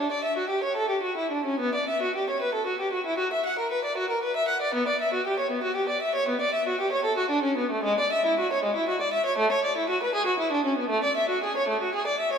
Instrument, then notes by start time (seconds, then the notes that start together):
violin
0.00 D4
0.12 D5
0.24 E5
0.38 F#4
0.50 G4
0.64 C#5
0.77 A4
0.90 G4
1.03 F#4
1.17 E4
1.32 D4
1.46 C#4
1.60 B3
1.75 D5
1.89 E5
2.03 F#4
2.16 G4
2.30 C#5
2.42 B4
2.54 A4
2.67 F#4
2.80 G4
2.93 F#4
3.06 E4
3.18 F#4
3.33 E5
3.46 F#5
3.59 A#4
3.71 B4
3.85 D5
3.97 F#4
4.10 A#4
4.23 B4
4.36 E5
4.48 F#5
4.62 D5
4.74 B3
4.88 D5
5.01 E5
5.13 F#4
5.27 G4
5.39 C#5
5.51 B3
5.63 F#4
5.76 G4
5.89 D5
6.02 E5
6.15 C#5
6.29 B3
6.41 D5
6.54 E5
6.68 F#4
6.81 G4
6.92 C#5
7.05 A4
7.18 F#4
7.30 D4
7.44 C#4
7.58 B3
7.71 A3
7.84 G#3
8.00 D5
8.13 E5
8.26 E4
8.39 F#4
8.52 C#5
8.64 G#3
8.76 E4
8.89 F#4
9.01 D5
9.13 E5
9.26 C#5
9.38 A3
9.52 C#5
9.65 D5
9.77 E4
9.90 F#4
10.03 B4
10.15 G#4
10.27 F#4
10.40 E4
10.52 D4
10.65 C#4
10.78 B3
10.89 A3
11.04 D5
11.17 E5
11.29 F#4
11.44 G#4
11.57 C#5
11.69 A3
11.82 F#4
11.95 G#4
12.07 D5
12.20 E5
12.33 C#5